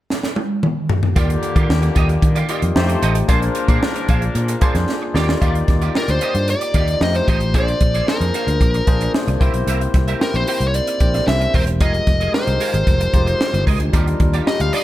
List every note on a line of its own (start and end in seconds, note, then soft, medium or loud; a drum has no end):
0.10 snare medium
0.23 snare medium
0.36 high tom medium
0.63 mid tom medium
0.89 floor tom loud
1.03 floor tom medium
1.16 1.35 D#2 loud
1.16 2.47 D3 medium
1.16 1.89 D#3 medium
1.16 1.89 A#3 medium
1.16 2.47 A#3 medium
1.16 1.30 F4 medium
1.16 1.89 F4 medium
1.16 2.47 G4 medium
1.16 1.89 G4 medium
1.16 1.29 G4 medium
1.16 1.90 D5 medium
1.16 1.28 D5 medium
1.16 kick loud
1.16 closed hi-hat medium
1.29 muted clean electric guitar stroke soft
1.29 closed hi-hat soft
1.43 muted clean electric guitar stroke soft
1.43 closed hi-hat medium
1.56 1.65 D#3 medium
1.56 1.68 F4 medium
1.56 1.67 G4 medium
1.56 1.67 D5 medium
1.56 kick medium
1.56 closed hi-hat soft
1.69 1.88 D#2 medium
1.69 muted clean electric guitar stroke soft
1.69 snare loud
1.82 muted clean electric guitar stroke medium
1.82 closed hi-hat soft
1.95 2.15 D#2 medium
1.95 2.10 F4 medium
1.95 2.08 G4 medium
1.95 2.08 D#5 loud
1.95 kick medium
1.95 closed hi-hat medium
2.09 muted clean electric guitar stroke soft
2.09 closed hi-hat soft
2.22 2.41 D#3 loud
2.22 muted clean electric guitar stroke soft
2.22 kick medium
2.22 closed hi-hat medium
2.35 2.47 F4 medium
2.35 2.47 G4 medium
2.35 2.47 D5 medium
2.35 closed hi-hat medium
2.48 2.76 A#3 medium
2.48 2.74 D#4 medium
2.48 2.63 F4 medium
2.48 2.75 F4 medium
2.48 2.62 G4 medium
2.48 2.75 G4 medium
2.48 2.61 D5 medium
2.48 2.76 D#5 medium
2.48 closed hi-hat medium
2.62 2.72 F2 medium
2.62 muted clean electric guitar stroke soft
2.62 closed hi-hat medium
2.75 2.95 F2 medium
2.75 3.18 A3 medium
2.75 3.02 A3 medium
2.75 3.18 D#4 medium
2.75 3.18 F4 medium
2.75 3.02 G4 medium
2.75 3.18 G4 medium
2.75 3.02 C5 medium
2.75 3.19 C5 loud
2.75 snare loud
2.89 muted clean electric guitar stroke soft
2.89 closed hi-hat medium
3.02 3.21 A1 medium
3.02 3.16 G4 medium
3.02 3.15 A4 medium
3.02 3.14 D#5 medium
3.02 closed hi-hat medium
3.15 muted clean electric guitar stroke soft
3.15 closed hi-hat medium
3.28 3.48 A#1 medium
3.28 4.85 F3 medium
3.28 4.01 A#3 medium
3.28 4.02 D4 medium
3.28 4.86 D4 medium
3.28 4.02 F4 medium
3.28 3.43 G#4 medium
3.28 4.02 G#4 medium
3.28 4.86 A#4 medium
3.28 3.42 C5 medium
3.28 4.02 C5 medium
3.28 3.41 D5 medium
3.28 kick medium
3.28 closed hi-hat loud
3.42 muted clean electric guitar stroke soft
3.42 closed hi-hat soft
3.55 muted clean electric guitar stroke soft
3.55 closed hi-hat medium
3.68 3.78 A#2 medium
3.68 3.80 G#4 soft
3.68 3.80 C5 medium
3.68 3.80 D5 medium
3.68 kick medium
3.68 closed hi-hat medium
3.82 muted clean electric guitar stroke soft
3.82 snare loud
3.95 muted clean electric guitar stroke soft
3.95 closed hi-hat medium
4.09 4.28 A#1 medium
4.09 4.23 G#4 medium
4.09 4.22 C5 medium
4.09 4.22 F5 loud
4.09 kick medium
4.09 closed hi-hat medium
4.22 muted clean electric guitar stroke soft
4.22 closed hi-hat soft
4.35 4.54 A#2 loud
4.35 muted clean electric guitar stroke soft
4.35 closed hi-hat medium
4.48 muted clean electric guitar stroke soft
4.48 closed hi-hat medium
4.61 5.13 A#3 medium
4.61 5.15 D4 medium
4.61 5.13 F4 medium
4.61 5.15 G#4 medium
4.61 4.76 G#4 medium
4.61 5.15 C5 medium
4.61 4.75 C5 medium
4.61 4.74 D5 medium
4.61 kick medium
4.61 closed hi-hat medium
4.75 4.84 F2 medium
4.75 muted clean electric guitar stroke soft
4.75 snare soft
4.75 closed hi-hat soft
4.89 snare medium
5.02 muted clean electric guitar stroke soft
5.14 5.33 D#2 medium
5.14 5.36 A#3 medium
5.14 5.36 D#4 medium
5.14 5.36 F4 medium
5.14 5.29 F4 medium
5.14 5.36 G4 medium
5.14 5.28 G4 medium
5.14 5.36 D5 loud
5.14 5.28 D5 medium
5.14 snare medium
5.29 muted clean electric guitar stroke soft
5.29 snare medium
5.41 5.61 D#2 medium
5.41 5.78 A#3 medium
5.41 5.78 D#4 medium
5.41 5.56 F4 medium
5.41 5.78 F4 medium
5.41 5.78 G4 medium
5.41 5.55 G4 medium
5.41 5.78 D5 medium
5.41 5.54 D5 loud
5.41 kick medium
5.41 closed hi-hat medium
5.55 muted clean electric guitar stroke soft
5.55 closed hi-hat soft
5.68 5.87 D#2 medium
5.68 muted clean electric guitar stroke soft
5.68 kick medium
5.68 snare soft
5.68 closed hi-hat medium
5.81 5.93 F4 soft
5.81 5.93 G4 medium
5.81 5.93 D5 medium
5.81 closed hi-hat soft
5.95 6.50 A#3 medium
5.95 6.50 D#4 medium
5.95 6.50 F4 medium
5.95 6.50 G4 medium
5.95 6.10 A#4 medium
5.95 6.02 C#5 medium
5.95 muted clean electric guitar stroke soft
5.95 snare medium
6.02 6.53 D5 medium
6.08 6.18 D2 medium
6.08 6.21 C5 medium
6.08 muted clean electric guitar stroke soft
6.08 closed hi-hat medium
6.21 6.35 F4 medium
6.21 6.34 G4 medium
6.21 6.47 C5 medium
6.21 6.34 D#5 medium
6.21 closed hi-hat medium
6.35 6.53 G2 medium
6.35 muted clean electric guitar stroke soft
6.35 closed hi-hat soft
6.48 6.99 D5 medium
6.48 muted clean electric guitar stroke soft
6.48 closed hi-hat medium
6.61 muted clean electric guitar stroke soft
6.61 closed hi-hat medium
6.74 6.93 D#2 medium
6.74 7.01 A#3 medium
6.74 7.00 D#4 medium
6.74 6.89 F4 medium
6.74 7.00 F4 medium
6.74 7.00 G4 medium
6.74 6.88 G4 medium
6.74 6.87 D5 medium
6.74 7.01 D#5 medium
6.74 kick medium
6.74 closed hi-hat medium
6.88 muted clean electric guitar stroke soft
6.88 closed hi-hat soft
7.01 7.20 F2 medium
7.01 7.43 A3 medium
7.01 7.44 D#4 medium
7.01 7.44 F4 medium
7.01 7.44 G4 medium
7.01 7.44 C5 medium
7.01 7.16 D#5 medium
7.01 snare medium
7.15 7.28 C5 medium
7.15 muted clean electric guitar stroke soft
7.15 closed hi-hat soft
7.28 7.54 A1 medium
7.28 7.42 G4 medium
7.28 7.41 A4 medium
7.28 7.53 C5 medium
7.28 7.40 D#5 medium
7.28 kick medium
7.28 closed hi-hat medium
7.40 muted clean electric guitar stroke soft
7.40 closed hi-hat soft
7.54 7.73 A#1 medium
7.54 7.91 A#3 medium
7.54 7.91 D4 medium
7.54 7.91 F4 medium
7.54 7.69 G#4 medium
7.54 7.91 G#4 medium
7.54 7.91 C5 medium
7.54 7.68 C5 medium
7.54 8.10 D5 loud
7.54 7.67 D5 medium
7.54 kick medium
7.54 closed hi-hat medium
7.68 muted clean electric guitar stroke soft
7.68 closed hi-hat soft
7.81 8.00 A#1 medium
7.81 muted clean electric guitar stroke soft
7.81 kick medium
7.81 closed hi-hat medium
7.94 8.06 G#4 medium
7.94 8.06 C5 medium
7.94 8.05 D5 medium
7.94 closed hi-hat soft
8.07 8.62 A#3 medium
8.07 8.62 D4 medium
8.07 8.62 F4 medium
8.07 8.63 G#4 medium
8.07 9.10 A#4 medium
8.07 8.63 C5 medium
8.07 muted clean electric guitar stroke soft
8.07 snare medium
8.21 8.30 F2 medium
8.21 muted clean electric guitar stroke soft
8.21 closed hi-hat soft
8.34 8.48 G#4 medium
8.34 8.47 C5 medium
8.34 8.47 F5 medium
8.34 closed hi-hat medium
8.47 8.57 D2 medium
8.47 muted clean electric guitar stroke soft
8.47 closed hi-hat soft
8.61 8.80 A#1 loud
8.61 muted clean electric guitar stroke soft
8.61 kick medium
8.61 closed hi-hat medium
8.74 muted clean electric guitar stroke soft
8.74 closed hi-hat soft
8.87 9.06 A#1 medium
8.87 9.39 A#3 medium
8.87 9.41 D4 medium
8.87 9.41 F4 medium
8.87 9.41 G#4 medium
8.87 9.40 C5 medium
8.87 kick medium
8.87 closed hi-hat medium
9.01 muted clean electric guitar stroke soft
9.01 closed hi-hat soft
9.14 snare loud
9.28 9.37 C2 medium
9.28 muted clean electric guitar stroke soft
9.28 closed hi-hat soft
9.40 9.50 C2 medium
9.40 10.04 A#3 medium
9.40 10.04 C4 medium
9.40 10.05 E4 medium
9.40 10.05 G4 medium
9.40 9.55 G4 medium
9.40 9.54 A#4 medium
9.40 10.05 C5 loud
9.40 9.53 E5 medium
9.40 kick medium
9.40 closed hi-hat medium
9.54 9.63 B1 medium
9.54 muted clean electric guitar stroke soft
9.54 closed hi-hat medium
9.67 9.86 C2 medium
9.67 9.82 G4 medium
9.67 9.80 A#4 medium
9.67 9.80 E5 medium
9.67 closed hi-hat medium
9.81 muted clean electric guitar stroke soft
9.81 closed hi-hat soft
9.94 10.13 C2 medium
9.94 muted clean electric guitar stroke soft
9.94 kick medium
9.94 snare soft
9.94 closed hi-hat medium
10.08 10.19 G4 medium
10.08 10.19 A#4 medium
10.08 10.19 E5 medium
10.08 closed hi-hat soft
10.20 10.75 A#3 medium
10.20 10.75 C4 medium
10.20 10.27 D#4 soft
10.20 10.76 G4 medium
10.20 10.36 A#4 medium
10.20 10.76 C5 medium
10.20 muted clean electric guitar stroke soft
10.20 snare loud
10.27 10.79 E4 medium
10.34 10.43 A#1 medium
10.34 10.48 C5 medium
10.34 muted clean electric guitar stroke soft
10.34 closed hi-hat medium
10.47 10.61 G4 medium
10.47 10.61 A#4 medium
10.47 10.66 C5 medium
10.47 10.61 G5 loud
10.47 open hi-hat medium
10.60 10.79 C2 medium
10.60 muted clean electric guitar stroke soft
10.60 closed hi-hat soft
10.68 10.74 C#5 medium
10.74 11.24 D5 medium
10.74 muted clean electric guitar stroke soft
10.74 closed hi-hat medium
10.87 muted clean electric guitar stroke soft
10.87 closed hi-hat medium
11.00 11.19 A#1 medium
11.00 11.55 A#3 medium
11.00 11.55 C4 medium
11.00 11.07 D4 soft
11.00 11.55 G4 medium
11.00 11.56 C5 medium
11.00 kick medium
11.00 closed hi-hat medium
11.07 11.59 E4 medium
11.14 muted clean electric guitar stroke soft
11.14 snare soft
11.14 closed hi-hat soft
11.27 11.46 C2 medium
11.27 11.52 E5 medium
11.27 snare loud
11.41 muted clean electric guitar stroke soft
11.41 closed hi-hat soft
11.54 11.81 E1 medium
11.54 11.68 G4 medium
11.54 11.67 A#4 medium
11.54 11.62 C5 medium
11.54 11.66 E5 medium
11.54 kick medium
11.54 open hi-hat medium
11.67 muted clean electric guitar stroke soft
11.67 closed hi-hat medium
11.80 11.99 F1 medium
11.80 12.17 G#3 medium
11.80 12.17 D#4 medium
11.80 12.17 F4 medium
11.80 12.17 G4 medium
11.80 11.95 G#4 medium
11.80 12.17 A#4 medium
11.80 11.93 A#4 medium
11.80 12.30 D#5 loud
11.80 11.93 D#5 medium
11.80 kick medium
11.80 closed hi-hat medium
11.94 muted clean electric guitar stroke soft
11.94 closed hi-hat soft
12.07 12.26 F1 medium
12.07 muted clean electric guitar stroke soft
12.07 kick medium
12.07 snare soft
12.07 closed hi-hat medium
12.20 12.32 G#4 soft
12.20 12.32 A#4 soft
12.20 12.31 D#5 medium
12.20 closed hi-hat soft
12.33 12.88 G#3 medium
12.33 12.88 D#4 medium
12.33 12.88 F4 medium
12.33 12.89 G4 medium
12.33 12.89 A#4 medium
12.33 13.63 C5 medium
12.33 muted clean electric guitar stroke soft
12.33 snare medium
12.47 12.57 C2 medium
12.47 muted clean electric guitar stroke soft
12.47 closed hi-hat medium
12.60 12.74 G#4 medium
12.60 12.73 A#4 medium
12.60 12.73 F5 medium
12.60 open hi-hat medium
12.73 12.83 G#1 medium
12.73 muted clean electric guitar stroke soft
12.73 closed hi-hat soft
12.87 13.06 F1 medium
12.87 muted clean electric guitar stroke soft
12.87 kick medium
12.87 closed hi-hat medium
13.00 muted clean electric guitar stroke soft
13.00 closed hi-hat medium
13.13 13.32 F1 medium
13.13 13.68 G#3 medium
13.13 13.68 D#4 medium
13.13 13.68 F4 medium
13.13 13.68 G4 medium
13.13 13.69 C5 medium
13.13 kick medium
13.13 closed hi-hat medium
13.27 muted clean electric guitar stroke soft
13.27 closed hi-hat soft
13.41 snare loud
13.53 13.63 G1 medium
13.53 muted clean electric guitar stroke soft
13.53 closed hi-hat soft
13.67 13.77 C#2 medium
13.67 13.81 G#4 medium
13.67 13.79 A#4 medium
13.67 13.79 D#5 medium
13.67 kick medium
13.67 open hi-hat medium
13.80 13.90 D2 medium
13.80 muted clean electric guitar stroke soft
13.80 closed hi-hat medium
13.92 14.12 D#2 medium
13.92 14.29 G3 medium
13.92 14.30 D4 medium
13.92 14.30 D#4 medium
13.92 14.07 F4 medium
13.92 14.30 F4 medium
13.92 14.06 G4 medium
13.92 14.30 A#4 medium
13.92 14.05 D5 medium
13.92 kick medium
13.92 closed hi-hat medium
14.07 muted clean electric guitar stroke soft
14.07 closed hi-hat soft
14.20 14.39 D#2 medium
14.20 muted clean electric guitar stroke soft
14.20 kick medium
14.20 closed hi-hat medium
14.34 14.45 F4 medium
14.34 14.45 G4 medium
14.34 14.44 D5 medium
14.34 closed hi-hat soft
14.46 14.84 G3 medium
14.46 14.84 D4 medium
14.46 14.84 D#4 medium
14.46 14.84 F4 medium
14.46 14.84 G4 medium
14.46 14.61 D#5 medium
14.46 muted clean electric guitar stroke soft
14.46 snare loud
14.60 14.69 D2 medium
14.60 14.74 F5 medium
14.60 muted clean electric guitar stroke soft
14.60 closed hi-hat medium
14.73 14.84 F4 medium
14.73 14.84 G4 medium
14.73 14.84 D5 medium
14.73 14.84 D#5 medium
14.73 open hi-hat medium